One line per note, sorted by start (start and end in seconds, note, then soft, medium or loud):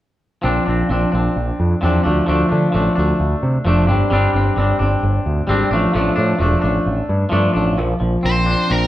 0.42 0.58 A#1 medium
0.42 0.89 F3 medium
0.42 0.68 C4 medium
0.42 0.65 D4 medium
0.66 0.82 A#1 medium
0.66 0.89 C4 soft
0.66 0.92 D4 medium
0.89 1.04 A#1 medium
0.89 1.36 F3 medium
0.89 1.14 C4 medium
0.89 1.12 D4 medium
1.12 1.28 A#1 medium
1.12 1.82 C4 soft
1.12 1.84 D4 medium
1.36 1.50 A#1 medium
1.60 1.74 F2 medium
1.81 1.97 E2 medium
1.81 2.03 F3 medium
1.81 2.04 C4 medium
1.81 2.03 D4 medium
2.04 2.20 D2 medium
2.04 2.25 F3 medium
2.04 2.27 A3 medium
2.04 2.29 D4 medium
2.26 2.43 D2 medium
2.26 2.71 F3 medium
2.26 2.51 A3 medium
2.26 2.48 D4 medium
2.49 2.66 D3 medium
2.49 2.73 A3 soft
2.49 2.75 D4 medium
2.72 2.89 A1 medium
2.72 3.19 F3 medium
2.72 2.98 A3 medium
2.72 2.95 D4 medium
2.96 3.12 D2 medium
2.96 3.65 A3 medium
2.96 3.67 D4 medium
3.20 3.34 D2 medium
3.43 3.57 C3 medium
3.65 3.88 F1 medium
3.65 3.87 F3 medium
3.65 3.88 A3 medium
3.65 3.87 D4 medium
3.87 4.02 G1 medium
3.87 4.09 G3 medium
3.87 4.11 C4 medium
3.87 4.13 D4 medium
4.10 4.26 G1 medium
4.10 4.55 G3 medium
4.10 4.35 C4 medium
4.10 4.33 D4 medium
4.33 4.48 G1 medium
4.33 4.57 C4 medium
4.33 4.59 D4 medium
4.56 4.71 G1 medium
4.56 5.03 G3 medium
4.56 4.81 C4 medium
4.56 4.79 D4 medium
4.79 4.94 G1 medium
4.79 5.48 C4 medium
4.79 5.50 D4 medium
5.03 5.17 G1 medium
5.26 5.40 D2 medium
5.47 5.63 G#1 medium
5.47 5.70 G3 medium
5.47 5.71 C4 medium
5.47 5.71 D4 medium
5.71 5.85 A1 medium
5.71 5.92 F3 medium
5.71 5.94 A3 medium
5.71 5.95 D4 medium
5.94 6.09 A1 medium
5.94 6.37 F3 medium
5.94 6.18 A3 medium
5.94 6.14 D4 medium
6.16 6.32 A2 medium
6.16 6.39 A3 medium
6.16 6.41 D4 medium
6.39 6.54 E1 medium
6.39 6.85 F3 medium
6.39 6.63 A3 medium
6.39 6.60 D4 medium
6.61 6.78 A1 medium
6.61 7.30 A3 medium
6.61 7.31 D4 medium
6.86 7.01 A1 medium
7.09 7.24 G2 medium
7.29 7.47 G2 medium
7.29 7.75 F3 medium
7.29 7.55 A3 medium
7.29 7.52 D4 medium
7.53 7.78 A1 medium
7.53 7.77 A3 soft
7.53 7.76 D4 medium
7.78 7.93 A#1 medium
7.78 7.99 F3 medium
8.00 8.16 A#1 medium
8.00 8.87 F3 medium
8.23 8.54 A#1 medium
8.23 8.68 C4 medium
8.23 8.72 C5 medium
8.46 8.87 D4 medium
8.70 8.85 A#1 medium
8.70 8.87 C4 medium
8.70 8.87 A#4 medium